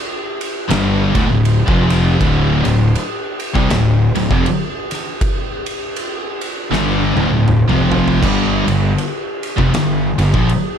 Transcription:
0.41 ride medium
0.69 1.12 G1 loud
0.69 1.13 G2 medium
0.69 1.13 D3 loud
0.69 1.13 G3 loud
0.69 snare loud
0.69 ride loud
1.14 1.29 D1 loud
1.14 1.28 D2 medium
1.14 1.29 A2 loud
1.14 kick loud
1.14 ride medium
1.29 1.65 D1 medium
1.29 1.58 D2 medium
1.29 1.58 A2 medium
1.45 ride loud
1.67 2.17 F1 loud
1.67 2.19 F2 medium
1.67 2.19 C3 loud
1.67 2.19 F3 loud
1.67 kick loud
1.90 snare soft
1.90 ride medium
2.20 2.62 D1 medium
2.20 2.62 D2 loud
2.20 2.63 A2 loud
2.20 2.64 D3 loud
2.20 kick loud
2.20 ride loud
2.64 2.93 D1 medium
2.64 2.88 D2 medium
2.64 2.88 A2 medium
2.64 ride medium
2.95 ride loud
3.40 ride medium
3.54 3.69 C2 loud
3.54 3.69 C3 loud
3.54 3.69 G3 loud
3.54 kick loud
3.70 4.12 D1 medium
3.70 4.06 D2 medium
3.70 4.06 A2 medium
3.70 snare loud
3.70 ride loud
4.15 4.29 D1 medium
4.15 4.30 D2 medium
4.15 4.30 A2 medium
4.15 ride medium
4.31 4.45 F1 loud
4.31 4.45 F2 medium
4.31 4.45 C3 loud
4.31 kick loud
4.46 ride loud
4.91 snare soft
4.91 ride medium
5.21 kick loud
5.21 ride loud
5.66 ride medium
5.96 ride loud
6.41 ride medium
6.71 7.13 G1 loud
6.71 7.14 G2 loud
6.71 7.15 D3 loud
6.71 7.15 G3 loud
6.71 snare medium
7.16 7.30 D1 loud
7.16 7.30 D2 medium
7.16 7.31 A2 medium
7.16 high tom medium
7.31 7.66 D1 medium
7.31 7.60 D2 medium
7.31 7.61 A2 medium
7.48 mid tom loud
7.69 8.18 F1 medium
7.69 8.21 F2 medium
7.69 8.22 C3 medium
7.69 8.22 F3 loud
7.69 mid tom medium
7.92 floor tom loud
8.08 floor tom medium
8.22 8.64 G1 medium
8.22 8.65 G2 loud
8.22 8.66 D3 loud
8.22 8.66 G3 loud
8.22 kick loud
8.22 crash loud
8.67 8.95 G1 medium
8.67 8.91 G2 medium
8.67 8.92 D3 medium
8.67 ride medium
8.98 ride loud
9.43 ride medium
9.58 9.72 F1 loud
9.58 9.72 F2 medium
9.58 9.72 C3 loud
9.58 kick medium
9.73 10.14 G1 medium
9.73 10.09 G2 medium
9.73 10.09 D3 medium
9.73 snare loud
9.73 ride loud
10.18 10.32 G1 medium
10.18 10.33 G2 medium
10.18 10.33 D3 medium
10.18 ride medium
10.33 10.48 A#1 loud
10.33 10.47 A#2 medium
10.33 10.48 F3 loud
10.33 kick loud
10.49 ride loud

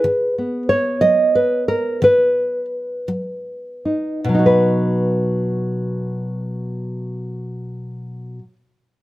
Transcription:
0.00 0.68 B4 loud
0.04 0.62 D#3 medium
0.38 4.26 B3 soft
0.69 1.34 C#5 medium
1.01 1.61 F#3 medium
1.01 2.02 D#5 medium
1.35 1.68 B4 medium
1.68 2.02 A#4 medium
2.02 2.65 D#3 medium
2.02 3.85 B4 medium
3.08 3.77 F#3 medium
3.85 4.33 D#4 soft
4.24 8.39 B2 medium
4.29 8.43 F#3 medium
4.34 8.48 D#4 medium
4.39 8.53 F#4 medium
4.46 8.56 B4 medium

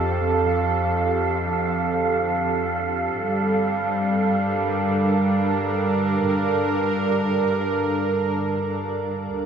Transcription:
0.00 3.14 F2 medium
0.00 9.46 D3 medium
0.00 3.17 F3 medium
0.00 4.56 C4 medium
0.00 9.46 D4 medium
0.00 5.50 G4 medium
0.00 9.46 A4 medium
0.00 9.36 F5 medium
3.16 9.29 G2 medium
3.16 9.33 G3 medium
3.94 9.46 D4 medium
4.44 9.46 A#4 medium
9.33 9.46 D#2 medium

